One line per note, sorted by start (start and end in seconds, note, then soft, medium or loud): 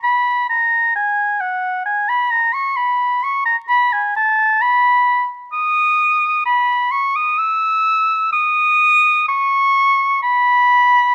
0.03 0.48 B5 medium
0.49 0.94 A#5 medium
0.96 1.42 G#5 medium
1.41 1.85 F#5 medium
1.86 2.11 G#5 medium
2.09 2.32 B5 medium
2.31 2.55 A#5 medium
2.53 2.78 C#6 medium
2.77 3.25 B5 medium
3.23 3.45 C#6 medium
3.45 3.56 A#5 medium
3.69 3.94 B5 medium
3.93 4.16 G#5 medium
4.16 4.63 A5 medium
4.61 5.27 B5 medium
5.53 6.41 D#6 loud
6.45 6.93 B5 medium
6.91 7.18 C#6 medium
7.16 7.40 D#6 medium
7.38 8.32 E6 loud
8.33 9.27 D#6 loud
9.28 10.20 C#6 loud
10.23 11.15 B5 loud